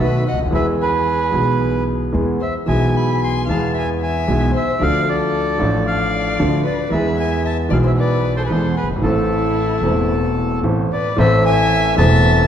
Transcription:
0.00 upright bass B1, grand piano B1 B2 D#3 A3 B3 F#4, violin B4, bandoneon E5
0.28 violin D#5, bandoneon F#5
0.32 upright bass C#2, grand piano C#2
0.39 grand piano D2, upright bass D2
0.45 grand piano D#2, upright bass D#2
0.51 grand piano E2 E3 G#3 B3 G#4, upright bass E2, bandoneon E5
0.55 violin B4
0.82 violin G#4, bandoneon B4
1.31 grand piano B1 B2 E3 G#3 B3 G#4, upright bass B1
2.12 grand piano E2 E3 G#3 B3 G#4, upright bass E2
2.40 violin C5, bandoneon E5
2.66 grand piano B1 B2 E3 G#3 B3 G#4, upright bass B1, violin E5, bandoneon G#5
2.94 violin G#5, bandoneon B5
3.22 violin G#5, bandoneon C6
3.47 upright bass E2, grand piano E2 E3 G#3 B3, violin F5, bandoneon A5
3.52 grand piano G#4
3.74 violin E5, bandoneon G#5
4.00 violin E5, bandoneon G#5
4.27 grand piano B1 B2 E3 G#3 B3 G#4, upright bass B1
4.53 violin C5, bandoneon E5
4.79 grand piano D2 D3 F3 A3 D4, upright bass D2, violin D5, bandoneon F5
4.83 grand piano A4
5.06 violin A4, bandoneon D5
5.58 grand piano A1 A2 F3 A3 D4 A4, upright bass A1
5.85 violin D5, bandoneon F5
6.39 grand piano D2 D3 F3 A3 D4 A4, upright bass D2
6.64 violin B4, bandoneon D5
6.90 upright bass E2, grand piano E2 E3 G#3 B3 G#4, violin B4, bandoneon E5
7.18 violin E5, bandoneon G#5
7.45 violin E5, bandoneon A5
7.69 upright bass B1, grand piano B1 B2 E3 G#3 B3, violin D5, bandoneon F5
7.73 grand piano G#4
7.83 violin C5, bandoneon E5
7.97 violin B4, bandoneon D5
8.36 violin A4, bandoneon C5
8.44 violin G#4, bandoneon B4
8.50 upright bass E2, grand piano E2 E3 G#3 B3 G#4, violin A4, bandoneon C5
8.77 violin G#4, bandoneon B4
8.83 upright bass F#1, grand piano F#1
8.89 upright bass G1, grand piano G1
8.96 grand piano G#1, upright bass G#1
9.02 upright bass A1, grand piano A1 A2 E3 A3 C4, violin E4, bandoneon A4
9.06 grand piano A4
9.81 upright bass E1, grand piano E1 E2 E3 A3 C4 A4
10.63 upright bass A1, grand piano A1 A2 E3 A3 C4 A4
10.92 violin B4, bandoneon D5
11.17 upright bass A1, grand piano A1 A2 E3 A3 C4 A4, violin C5, bandoneon E5
11.45 violin E5, bandoneon G#5
11.96 upright bass E1, grand piano E1 E2 E3 A3 C4 A4, violin E5, bandoneon A5

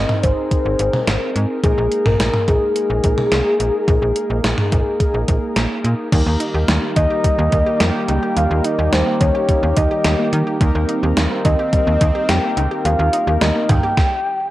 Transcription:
Already playing: analog polysynth C4 D#4 G#4 A#4, soft synth lead D#5
0.09 mid tom
0.23 fm bass G#1, soft synth lead C5, kick, closed hi-hat
0.51 kick, closed hi-hat
0.66 fm bass G#1
0.79 fm bass G#1, closed hi-hat
0.93 mid tom
1.07 fm bass G#1, snare, closed hi-hat
1.36 fm bass G#2, closed hi-hat
1.64 fm bass A#1, analog polysynth A#3 D#4 G#4 A#4, soft synth lead G#4, kick, closed hi-hat
1.78 fm bass A#1
1.92 closed hi-hat
2.06 fm bass A#1, soft synth lead A#4, mid tom
2.20 fm bass A#1, snare, closed hi-hat
2.33 mid tom
2.48 fm bass A#1, soft synth lead G#4, kick, closed hi-hat
2.76 closed hi-hat
2.90 fm bass A#1
3.04 fm bass A#1, kick, closed hi-hat
3.18 mid tom
3.32 fm bass C2, snare, closed hi-hat
3.60 fm bass A#1, closed hi-hat
3.88 fm bass A#1, kick, closed hi-hat
4.02 fm bass A#1
4.16 closed hi-hat
4.30 fm bass A#1
4.44 fm bass A#1, snare, closed hi-hat
4.58 mid tom
4.72 fm bass A#1, kick, closed hi-hat
5.00 kick, closed hi-hat
5.14 fm bass A#1
5.28 fm bass A#1, kick, closed hi-hat
5.56 fm bass A#1, snare, closed hi-hat
5.84 fm bass A#2, closed hi-hat
6.12 fm bass D#2, analog synth pad D#3 G3 A#3 G4, synth arpeggio sound G3, analog polysynth A#3 D#4 G4 A#4, kick, closed hi-hat, crash
6.26 fm bass D#2, synth arpeggio sound A#3
6.40 synth arpeggio sound D#4, closed hi-hat
6.54 fm bass D#2, synth arpeggio sound G4
6.68 fm bass D#2, synth arpeggio sound G3, snare, closed hi-hat
6.82 synth arpeggio sound A#3
6.96 fm bass D#2, synth arpeggio sound D#4, soft synth lead D#5, kick, closed hi-hat
7.10 synth arpeggio sound G4
7.24 synth arpeggio sound G3, kick, closed hi-hat
7.38 fm bass D#2, synth arpeggio sound A#3
7.52 fm bass D#2, synth arpeggio sound D#4, kick, closed hi-hat
7.66 synth arpeggio sound G4
7.80 fm bass F2, synth arpeggio sound G3, soft synth lead G5, snare, closed hi-hat
7.95 synth arpeggio sound A#3
8.09 fm bass C#2, synth arpeggio sound D#4, soft synth lead G5, closed hi-hat
8.23 synth arpeggio sound G4
8.37 fm bass D#2, synth arpeggio sound G3, soft synth lead F5, closed hi-hat
8.51 fm bass D#2, synth arpeggio sound A#3
8.64 synth arpeggio sound D#4, soft synth lead D#5, closed hi-hat
8.79 fm bass D#2, synth arpeggio sound G4
8.93 fm bass D#2, synth arpeggio sound G3, soft synth lead C5, snare, closed hi-hat
9.07 synth arpeggio sound A#3
9.21 fm bass D#2, synth arpeggio sound D#4, soft synth lead C#5, kick, closed hi-hat
9.35 synth arpeggio sound G4
9.49 synth arpeggio sound G3, kick, closed hi-hat
9.63 fm bass D#2, synth arpeggio sound A#3
9.77 fm bass D#2, synth arpeggio sound D#4, soft synth lead D#5, kick, closed hi-hat
9.91 synth arpeggio sound G4
10.05 fm bass D#2, synth arpeggio sound G3, snare, closed hi-hat
10.19 synth arpeggio sound A#3
10.33 fm bass D#3, synth arpeggio sound D#4, closed hi-hat
10.47 synth arpeggio sound G4
10.61 fm bass D#2, synth arpeggio sound G3, analog polysynth A#3 D#4 G4 A#4, analog synth pad C4, kick, closed hi-hat
10.75 fm bass D#2, synth arpeggio sound A#3
10.89 synth arpeggio sound D#4, closed hi-hat
11.03 fm bass D#2, synth arpeggio sound G4
11.17 fm bass D#2, synth arpeggio sound G3, snare, closed hi-hat
11.31 synth arpeggio sound A#3
11.45 fm bass D#2, synth arpeggio sound D#4, soft synth lead D#5, kick, closed hi-hat
11.59 synth arpeggio sound G4
11.73 synth arpeggio sound G3, kick, closed hi-hat
11.87 fm bass D#2, synth arpeggio sound A#3
12.01 fm bass D#2, synth arpeggio sound D#4, kick, closed hi-hat
12.15 synth arpeggio sound G4
12.29 fm bass F2, synth arpeggio sound G3, soft synth lead G5, snare, closed hi-hat
12.43 synth arpeggio sound A#3
12.57 fm bass C#2, synth arpeggio sound D#4, soft synth lead G5, closed hi-hat
12.71 synth arpeggio sound G4
12.85 fm bass D#2, synth arpeggio sound G3, soft synth lead F5, closed hi-hat
12.99 fm bass D#2, synth arpeggio sound A#3
13.13 synth arpeggio sound D#4, closed hi-hat
13.27 fm bass D#2, synth arpeggio sound G4
13.41 fm bass D#2, synth arpeggio sound G3, soft synth lead D#5, snare, closed hi-hat
13.55 synth arpeggio sound A#3
13.69 fm bass D#2, synth arpeggio sound D#4, soft synth lead G5, kick, closed hi-hat, mid tom
13.83 synth arpeggio sound G4
13.97 kick, snare

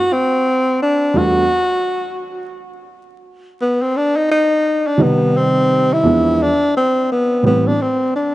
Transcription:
Already playing: tenor saxophone F#4
0.13 tenor saxophone C4
0.82 tenor saxophone D4
1.14 grand piano E2 G3 A3 B3 D4 F#4
1.18 tenor saxophone F#4
3.62 tenor saxophone B3
3.82 tenor saxophone C4
3.97 tenor saxophone D4
4.16 tenor saxophone D#4
4.31 tenor saxophone D#4
4.87 tenor saxophone D4
4.98 grand piano C3 D#3 G3 D#4
5.02 tenor saxophone B3
5.37 tenor saxophone C4
5.93 tenor saxophone E4
6.03 grand piano E2 F3 G#3 B3 D4
6.42 tenor saxophone D4
6.77 tenor saxophone C4
7.12 tenor saxophone B3
7.43 grand piano A2 E3 G3 B3 C4, tenor saxophone B3
7.67 tenor saxophone D4
7.82 tenor saxophone C4
8.16 tenor saxophone D4

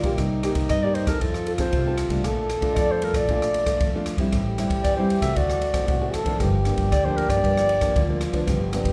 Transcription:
Already playing: nylon-string guitar D3, trombone F4
0.02 upright bass A#1, nylon-string guitar A#3 D#4 G4, kick, ride
0.18 upright bass C2, nylon-string guitar C3, trombone D#4, kick, cross-stick, ride
0.43 nylon-string guitar A#3 D#4 G4, cross-stick, ride
0.54 upright bass C2, kick, ride
0.69 nylon-string guitar G2, upright bass G2, clarinet D#5, kick, cross-stick, ride
0.83 nylon-string guitar A#3 D#4 G4, clarinet D5
0.95 clarinet C5, ride
1.06 upright bass D#2, nylon-string guitar C4 D#4 A4, clarinet A#4, kick, cross-stick, ride
1.21 upright bass F2, nylon-string guitar F3, trombone F4, clarinet A4, kick, ride
1.34 cross-stick
1.46 clarinet A4, ride
1.58 nylon-string guitar C4 D#4 A4, clarinet C5, kick, cross-stick, ride
1.72 upright bass C2, nylon-string guitar C3, kick, ride
1.87 nylon-string guitar C4 D#4 A4
1.98 cross-stick, ride
2.09 upright bass C2, nylon-string guitar A3 D4 F4, kick, ride
2.24 upright bass A#1, nylon-string guitar A#2, trombone A4, kick, cross-stick, ride
2.50 cross-stick, ride
2.61 upright bass A#1, nylon-string guitar A3 D4 F4, kick, ride
2.74 upright bass F2, nylon-string guitar F3, clarinet D5 D#5, kick, cross-stick, ride
2.92 clarinet C5
3.02 nylon-string guitar A3 D4 F4, clarinet A#4, ride
3.13 upright bass A#2, clarinet D5, kick, cross-stick, ride
3.28 upright bass A#1, nylon-string guitar A#2 A3 D4 F4, kick, ride
3.42 cross-stick
3.54 ride
3.66 nylon-string guitar A3 D4 F4, kick, cross-stick, ride
3.80 upright bass F2, nylon-string guitar F3, kick, ride
3.95 nylon-string guitar A3 D4 F4
4.06 cross-stick, ride
4.17 upright bass F2, nylon-string guitar G3 C4 E4, kick, ride
4.32 upright bass A1, nylon-string guitar A2, trombone G4, kick, cross-stick, ride
4.58 nylon-string guitar G3 C4 E4, cross-stick, ride
4.69 upright bass A1, kick, ride
4.84 upright bass E2, nylon-string guitar E3, clarinet D5, kick, cross-stick, ride
4.97 nylon-string guitar G3 C4 E4, clarinet C5
5.10 ride
5.20 upright bass C2, nylon-string guitar A3 C4 F#4, clarinet E5, kick, cross-stick, ride
5.36 upright bass D2, nylon-string guitar D3, trombone F#4, clarinet D5, kick, ride
5.50 cross-stick
5.61 ride
5.73 nylon-string guitar A3 C4 F#4, kick, cross-stick, ride
5.87 upright bass C2, nylon-string guitar A2, trombone F#4, kick, ride
6.01 nylon-string guitar A3 C4 F#4
6.13 upright bass A1, trombone A4, cross-stick, ride
6.25 nylon-string guitar F3 A#3 D4, kick, ride
6.40 upright bass G1, nylon-string guitar G2, trombone G4, kick, cross-stick, ride
6.64 nylon-string guitar F3 A#3 D4, cross-stick, ride
6.76 upright bass G1, kick, ride
6.91 upright bass D2, nylon-string guitar D3, clarinet D5, kick, cross-stick, ride
7.05 nylon-string guitar F3 A#3 D4, clarinet C5
7.17 clarinet A#4, ride
7.28 upright bass G2, nylon-string guitar F3 A#3 D4, clarinet D5, kick, cross-stick, ride
7.43 upright bass G1, nylon-string guitar G2 F3 A#3 D4, kick, ride
7.57 cross-stick
7.69 ride
7.81 nylon-string guitar F3 A#3 D4, kick, cross-stick, ride
7.96 upright bass D2, nylon-string guitar D3, trombone F4, kick, ride
8.09 nylon-string guitar F3 A#3 D4
8.21 cross-stick, ride
8.32 upright bass D2, nylon-string guitar F3 B3 D4, kick, ride
8.47 upright bass G1, nylon-string guitar G2, trombone G4, kick, cross-stick, ride
8.73 nylon-string guitar F3 B3 D4, cross-stick, ride
8.84 upright bass G1, kick, ride

